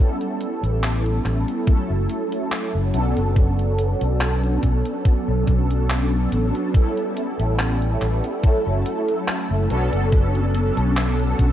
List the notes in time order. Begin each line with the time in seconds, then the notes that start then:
Already playing: G3 B3
0.00 C#4 E4 A4
0.21 closed hi-hat
0.41 closed hi-hat
0.63 A1, closed hi-hat
0.83 clap, closed hi-hat
1.06 closed hi-hat
1.25 A1, clap, closed hi-hat
1.48 closed hi-hat
1.66 F#3 A3 C#4 E4 A4, muted fingered electric bass stroke, kick, closed hi-hat
1.90 F#1
2.09 closed hi-hat
2.32 closed hi-hat
2.52 clap, closed hi-hat
2.75 F#1
2.93 B1 F#3 B3 C#4 D4 A4, closed hi-hat
3.17 F#1, closed hi-hat
3.36 kick, closed hi-hat
3.59 closed hi-hat
3.78 closed hi-hat
4.01 B1, closed hi-hat
4.21 clap, closed hi-hat
4.43 closed hi-hat
4.63 B1, kick, closed hi-hat
4.85 closed hi-hat
5.05 kick, closed hi-hat
5.28 B1
5.47 B1, kick, closed hi-hat
5.71 closed hi-hat
5.90 clap, closed hi-hat
6.32 A1, closed hi-hat
6.55 closed hi-hat
6.73 G3 B3 C#4 E4 A4, kick, closed hi-hat
6.97 closed hi-hat
7.17 closed hi-hat
7.39 A1, closed hi-hat
7.59 clap, closed hi-hat
7.82 closed hi-hat
8.02 A1, clap, closed hi-hat
8.24 closed hi-hat
8.42 F#3 A3 C#4 E4 A4, muted fingered electric bass stroke, kick, closed hi-hat
8.67 F#1
8.86 closed hi-hat
9.08 closed hi-hat
9.28 clap, closed hi-hat
9.51 F#1
9.69 B1 F#3 B3 C#4 D4 A4, closed hi-hat
9.93 F#1, closed hi-hat
10.12 kick, closed hi-hat
10.35 closed hi-hat
10.55 closed hi-hat
10.77 B1, closed hi-hat
10.97 clap, closed hi-hat
11.19 closed hi-hat
11.39 B1, kick, closed hi-hat